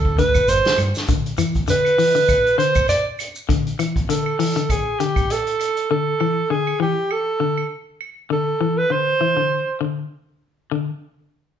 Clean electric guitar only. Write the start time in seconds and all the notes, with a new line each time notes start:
0.19 D3
1.09 D3
1.38 E3
1.68 D3
1.98 E3
2.15 D3
2.58 D3
3.49 D3
3.79 E3
4.09 D3
4.39 E3
4.56 D3
5.00 D3
5.91 D3
6.21 E3
6.50 D3
6.80 E3
7.40 D3
8.30 D3
8.61 E3
8.90 D3
9.21 E3
9.37 D3
9.81 D3
10.71 D3